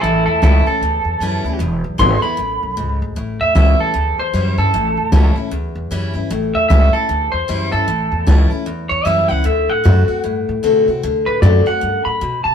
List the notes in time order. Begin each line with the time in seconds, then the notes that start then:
0.01 A1 A2 E4 A4
0.26 E2 E4 A4
0.42 C#2 E3 G3 C#4 E4 A4
0.66 C#4 E4 A4, muted upright bass stroke
0.81 D2 E2
1.05 E2
1.20 F#2 E3 G3 C#4 E4
1.44 D2 C#4 E4
1.59 E1 E2
1.84 B1
1.98 G#1 D3 G#3 B3 E4 C6
2.22 B3 E4 B5, muted upright bass stroke
2.37 A1 F#2
2.63 B1
2.77 C#2 G#2
3.02 D2
3.16 A1 A2
3.40 E2 E5
3.55 C#2 E3 G3 C#4 E4 E5
3.80 A4, muted upright bass stroke
3.94 D2 E2
4.19 E2 C5
4.33 F#2 E3 G3 C#4 E4
4.58 G2 C#4 E4 A4
4.74 A1 A2
4.97 E2
5.12 C#2 E3 G3 C#4 E4
5.36 C#4 E4, muted upright bass stroke
5.51 D2 E2
5.75 E2
5.91 F#2 E3 G3 C#4 E4
6.13 G2 C#4 E4
6.30 A1 A2
6.55 E2 E5
6.69 C#2 E3 G3 C#4 E4 E5
6.93 C#4 E4 A4, muted upright bass stroke
7.09 D2 E2
7.32 E2 C5
7.48 F#2 E3 G3 C#4 E4
7.72 G2 C#4 E4 A4
7.88 A1 A2
8.12 E2
8.27 C#2 E3 G3 C#4 E4
8.51 C#4 E4, muted upright bass stroke
8.66 D2 E2
8.89 E2 C#5
9.05 F#2 E3 G3 C#4 E4 E5
9.28 C#2 C#4 E4 F#5
9.44 D2 D3 E5
9.69 A2 F#5
9.84 F#2 D3 A3 C4 F#4
10.08 C4 F#4, muted upright bass stroke
10.24 G2 A2
10.49 A2
10.63 B2 D3 A3 C4 F#4
10.88 C3 C4 F#4
11.03 D2 D3
11.26 A2 B4
11.42 F#2 D3 A3 C4 F#4 D5
11.66 C4 F#4 F#5, muted upright bass stroke
11.81 F#2 G2
12.05 A2 B5
12.21 B2
12.44 C3 A5